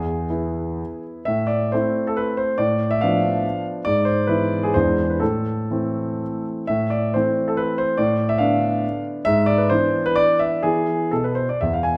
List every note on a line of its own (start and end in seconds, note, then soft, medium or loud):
0.00 0.28 E2 soft
0.00 1.02 G#4 medium
0.30 1.23 B3 soft
0.30 1.23 E4 soft
1.25 1.71 A2 soft
1.25 1.48 E5 medium
1.47 1.71 D5 medium
1.72 2.55 A3 soft
1.72 2.55 C4 soft
1.72 2.56 E4 soft
1.72 2.06 C5 medium
2.07 2.17 A4 medium
2.17 2.38 B4 medium
2.37 2.58 C5 medium
2.58 3.00 A2 medium
2.58 2.90 D5 medium
2.91 3.01 E5 medium
3.01 3.81 F3 soft
3.01 3.82 B3 soft
3.01 3.82 D4 medium
3.01 3.65 F5 medium
3.85 4.27 G#2 medium
3.85 4.05 D5 medium
4.05 4.28 C5 medium
4.27 4.70 E3 soft
4.27 4.70 B3 soft
4.27 4.70 E4 soft
4.27 4.62 B4 medium
4.63 4.74 G#4 medium
4.74 5.20 E2 soft
4.74 5.17 E3 soft
4.74 5.18 G#3 soft
4.74 5.18 D4 soft
4.74 5.09 C5 medium
5.10 5.21 B4 medium
5.20 5.69 A2 soft
5.20 6.45 A4 medium
5.70 6.64 E3 soft
5.70 6.65 A3 soft
5.70 6.65 C4 soft
6.67 7.12 A2 medium
6.67 6.90 E5 medium
6.90 7.13 D5 medium
7.14 7.95 E3 soft
7.14 7.95 A3 soft
7.14 7.96 C4 soft
7.14 7.48 C5 medium
7.48 7.58 A4 medium
7.57 7.78 B4 medium
7.78 7.98 C5 medium
7.97 8.39 A2 medium
7.97 8.28 D5 medium
8.29 8.40 E5 medium
8.38 9.21 D3 soft
8.38 9.21 B3 soft
8.38 9.21 D4 soft
8.38 9.04 F5 medium
9.25 9.68 G#2 medium
9.25 9.46 E5 loud
9.46 9.57 D5 medium
9.58 9.69 B4 medium
9.70 10.58 E3 soft
9.70 10.59 B3 soft
9.70 10.59 D4 soft
9.70 10.04 C5 medium
10.06 10.16 B4 medium
10.16 10.38 D5 medium
10.39 10.62 E5 medium
10.63 10.97 E3 soft
10.63 11.02 B3 soft
10.63 11.02 E4 soft
10.63 11.11 G#4 medium
11.11 11.46 B2 soft
11.11 11.23 A4 medium
11.24 11.36 B4 medium
11.35 11.47 C5 medium
11.49 11.60 D5 medium
11.61 11.93 E2 soft
11.61 11.72 E5 medium
11.74 11.84 F5 medium
11.83 11.94 G#5 medium